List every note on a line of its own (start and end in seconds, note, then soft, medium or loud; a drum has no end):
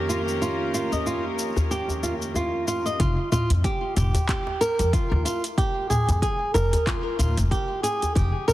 0.00 2.96 F2 medium
0.00 2.96 D#3 medium
0.00 2.96 A#3 medium
0.00 2.96 C#4 medium
0.00 2.96 G4 medium
0.00 2.96 A#4 medium
0.09 0.20 F4 medium
0.09 cabasa medium
0.28 cabasa soft
0.42 0.72 F4 medium
0.42 cabasa soft
0.74 0.91 F4 medium
0.74 cabasa medium
0.92 1.05 D#5 medium
0.92 djembe tone medium
0.92 cabasa soft
1.06 1.24 F4 medium
1.06 cabasa soft
1.39 cabasa medium
1.56 djembe slap soft
1.56 djembe bass loud
1.56 cabasa soft
1.71 1.88 G4 medium
1.71 cabasa soft
1.89 djembe tone medium
1.89 cabasa soft
2.03 2.13 F4 medium
2.03 djembe tone soft
2.03 cabasa medium
2.22 cabasa soft
2.34 2.66 F4 medium
2.34 djembe tone medium
2.34 cabasa soft
2.68 2.85 F4 medium
2.68 cabasa medium
2.86 2.98 D#5 medium
2.86 cabasa soft
3.00 3.14 F1 medium
3.00 3.31 F4 medium
3.00 kick loud
3.00 closed hi-hat medium
3.00 cabasa soft
3.32 3.49 F4 loud
3.32 mid tom medium
3.32 djembe tone medium
3.32 cabasa medium
3.50 3.61 F2 medium
3.50 closed hi-hat soft
3.50 cabasa soft
3.64 3.95 G4 medium
3.64 kick loud
3.64 closed hi-hat medium
3.64 cabasa soft
3.97 4.11 F1 loud
3.97 4.27 G4 medium
3.97 closed hi-hat soft
3.97 mid tom medium
3.97 cabasa medium
4.14 closed hi-hat medium
4.14 djembe slap soft
4.14 djembe bass medium
4.14 cabasa soft
4.29 4.60 G4 loud
4.29 kick loud
4.29 clap medium
4.29 closed hi-hat medium
4.29 cabasa soft
4.47 djembe slap medium
4.61 4.92 A#4 medium
4.61 closed hi-hat soft
4.61 cabasa medium
4.79 4.90 F2 medium
4.79 closed hi-hat soft
4.79 djembe slap medium
4.79 cabasa soft
4.93 5.24 F4 medium
4.93 kick loud
4.93 closed hi-hat soft
4.93 cabasa soft
5.12 5.23 D#2 medium
5.12 djembe tone medium
5.25 5.43 F4 loud
5.25 closed hi-hat medium
5.25 cabasa medium
5.44 closed hi-hat soft
5.44 cabasa soft
5.58 5.89 G4 loud
5.58 kick loud
5.58 closed hi-hat medium
5.58 cabasa soft
5.90 6.21 G#4 medium
5.90 mid tom medium
5.90 djembe tone medium
5.90 cabasa medium
6.08 6.20 F2 medium
6.08 closed hi-hat soft
6.08 cabasa soft
6.22 6.53 G#4 medium
6.22 kick loud
6.22 closed hi-hat medium
6.22 cabasa soft
6.54 6.69 F1 loud
6.54 6.85 A#4 loud
6.54 closed hi-hat soft
6.54 cabasa medium
6.73 closed hi-hat medium
6.73 djembe slap medium
6.73 djembe bass medium
6.73 cabasa soft
6.87 7.18 F4 medium
6.87 kick loud
6.87 clap medium
6.87 closed hi-hat medium
6.87 cabasa soft
7.19 7.39 D#2 medium
7.19 7.36 F4 loud
7.19 closed hi-hat soft
7.19 mid tom medium
7.19 cabasa medium
7.37 7.49 F1 medium
7.37 closed hi-hat soft
7.37 cabasa soft
7.51 7.82 G4 loud
7.51 kick loud
7.51 closed hi-hat soft
7.51 cabasa soft
7.83 8.14 G#4 medium
7.83 closed hi-hat medium
7.83 cabasa medium
8.02 closed hi-hat soft
8.02 djembe tone medium
8.02 cabasa soft
8.15 8.30 F1 medium
8.15 8.46 G4 loud
8.15 kick loud
8.15 closed hi-hat soft
8.15 cabasa soft
8.48 8.53 A#4 loud
8.48 mid tom medium
8.48 djembe tone medium
8.48 cabasa medium